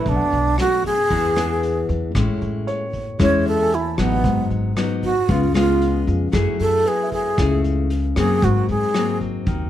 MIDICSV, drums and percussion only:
0, 0, Header, 1, 2, 480
1, 0, Start_track
1, 0, Key_signature, 3, "major"
1, 0, Tempo, 523104
1, 51, Time_signature, 4, 2, 24, 8
1, 8900, End_track
2, 0, Start_track
2, 0, Title_t, "Drums"
2, 54, Note_on_c, 9, 36, 52
2, 55, Note_on_c, 9, 42, 38
2, 145, Note_off_c, 9, 36, 0
2, 147, Note_off_c, 9, 42, 0
2, 295, Note_on_c, 9, 42, 24
2, 386, Note_off_c, 9, 42, 0
2, 531, Note_on_c, 9, 37, 54
2, 531, Note_on_c, 9, 42, 36
2, 623, Note_off_c, 9, 37, 0
2, 623, Note_off_c, 9, 42, 0
2, 773, Note_on_c, 9, 36, 22
2, 774, Note_on_c, 9, 42, 24
2, 865, Note_off_c, 9, 36, 0
2, 866, Note_off_c, 9, 42, 0
2, 1013, Note_on_c, 9, 36, 49
2, 1014, Note_on_c, 9, 42, 36
2, 1105, Note_off_c, 9, 36, 0
2, 1106, Note_off_c, 9, 42, 0
2, 1253, Note_on_c, 9, 37, 55
2, 1253, Note_on_c, 9, 42, 25
2, 1344, Note_off_c, 9, 37, 0
2, 1344, Note_off_c, 9, 42, 0
2, 1495, Note_on_c, 9, 42, 41
2, 1587, Note_off_c, 9, 42, 0
2, 1733, Note_on_c, 9, 36, 22
2, 1736, Note_on_c, 9, 42, 26
2, 1825, Note_off_c, 9, 36, 0
2, 1828, Note_off_c, 9, 42, 0
2, 1973, Note_on_c, 9, 36, 55
2, 1975, Note_on_c, 9, 37, 57
2, 1975, Note_on_c, 9, 42, 42
2, 2064, Note_off_c, 9, 36, 0
2, 2067, Note_off_c, 9, 37, 0
2, 2067, Note_off_c, 9, 42, 0
2, 2215, Note_on_c, 9, 42, 26
2, 2307, Note_off_c, 9, 42, 0
2, 2456, Note_on_c, 9, 42, 43
2, 2548, Note_off_c, 9, 42, 0
2, 2692, Note_on_c, 9, 36, 22
2, 2695, Note_on_c, 9, 42, 26
2, 2784, Note_off_c, 9, 36, 0
2, 2787, Note_off_c, 9, 42, 0
2, 2932, Note_on_c, 9, 36, 53
2, 2934, Note_on_c, 9, 37, 51
2, 2934, Note_on_c, 9, 42, 40
2, 3024, Note_off_c, 9, 36, 0
2, 3025, Note_off_c, 9, 37, 0
2, 3025, Note_off_c, 9, 42, 0
2, 3171, Note_on_c, 9, 42, 25
2, 3263, Note_off_c, 9, 42, 0
2, 3412, Note_on_c, 9, 42, 41
2, 3504, Note_off_c, 9, 42, 0
2, 3651, Note_on_c, 9, 36, 21
2, 3652, Note_on_c, 9, 37, 55
2, 3652, Note_on_c, 9, 42, 26
2, 3743, Note_off_c, 9, 36, 0
2, 3744, Note_off_c, 9, 37, 0
2, 3744, Note_off_c, 9, 42, 0
2, 3891, Note_on_c, 9, 42, 36
2, 3892, Note_on_c, 9, 36, 55
2, 3982, Note_off_c, 9, 42, 0
2, 3983, Note_off_c, 9, 36, 0
2, 4135, Note_on_c, 9, 42, 24
2, 4227, Note_off_c, 9, 42, 0
2, 4375, Note_on_c, 9, 37, 55
2, 4375, Note_on_c, 9, 42, 37
2, 4466, Note_off_c, 9, 37, 0
2, 4466, Note_off_c, 9, 42, 0
2, 4614, Note_on_c, 9, 36, 22
2, 4616, Note_on_c, 9, 42, 25
2, 4706, Note_off_c, 9, 36, 0
2, 4707, Note_off_c, 9, 42, 0
2, 4854, Note_on_c, 9, 36, 55
2, 4856, Note_on_c, 9, 42, 37
2, 4946, Note_off_c, 9, 36, 0
2, 4947, Note_off_c, 9, 42, 0
2, 5097, Note_on_c, 9, 37, 60
2, 5097, Note_on_c, 9, 42, 27
2, 5188, Note_off_c, 9, 37, 0
2, 5188, Note_off_c, 9, 42, 0
2, 5335, Note_on_c, 9, 42, 41
2, 5427, Note_off_c, 9, 42, 0
2, 5573, Note_on_c, 9, 36, 21
2, 5576, Note_on_c, 9, 42, 27
2, 5665, Note_off_c, 9, 36, 0
2, 5668, Note_off_c, 9, 42, 0
2, 5812, Note_on_c, 9, 36, 55
2, 5812, Note_on_c, 9, 37, 52
2, 5812, Note_on_c, 9, 42, 41
2, 5904, Note_off_c, 9, 36, 0
2, 5904, Note_off_c, 9, 37, 0
2, 5904, Note_off_c, 9, 42, 0
2, 6050, Note_on_c, 9, 42, 28
2, 6142, Note_off_c, 9, 42, 0
2, 6288, Note_on_c, 9, 42, 44
2, 6380, Note_off_c, 9, 42, 0
2, 6532, Note_on_c, 9, 36, 22
2, 6532, Note_on_c, 9, 42, 25
2, 6623, Note_off_c, 9, 36, 0
2, 6624, Note_off_c, 9, 42, 0
2, 6772, Note_on_c, 9, 36, 53
2, 6772, Note_on_c, 9, 37, 54
2, 6772, Note_on_c, 9, 42, 41
2, 6863, Note_off_c, 9, 36, 0
2, 6864, Note_off_c, 9, 37, 0
2, 6864, Note_off_c, 9, 42, 0
2, 7012, Note_on_c, 9, 42, 28
2, 7104, Note_off_c, 9, 42, 0
2, 7251, Note_on_c, 9, 42, 43
2, 7343, Note_off_c, 9, 42, 0
2, 7490, Note_on_c, 9, 36, 24
2, 7490, Note_on_c, 9, 37, 55
2, 7490, Note_on_c, 9, 42, 26
2, 7581, Note_off_c, 9, 37, 0
2, 7581, Note_off_c, 9, 42, 0
2, 7582, Note_off_c, 9, 36, 0
2, 7729, Note_on_c, 9, 42, 38
2, 7730, Note_on_c, 9, 36, 57
2, 7820, Note_off_c, 9, 42, 0
2, 7822, Note_off_c, 9, 36, 0
2, 7969, Note_on_c, 9, 42, 25
2, 8061, Note_off_c, 9, 42, 0
2, 8208, Note_on_c, 9, 37, 54
2, 8208, Note_on_c, 9, 42, 38
2, 8300, Note_off_c, 9, 37, 0
2, 8300, Note_off_c, 9, 42, 0
2, 8449, Note_on_c, 9, 36, 21
2, 8450, Note_on_c, 9, 42, 26
2, 8541, Note_off_c, 9, 36, 0
2, 8542, Note_off_c, 9, 42, 0
2, 8685, Note_on_c, 9, 42, 38
2, 8688, Note_on_c, 9, 36, 54
2, 8776, Note_off_c, 9, 42, 0
2, 8780, Note_off_c, 9, 36, 0
2, 8900, End_track
0, 0, End_of_file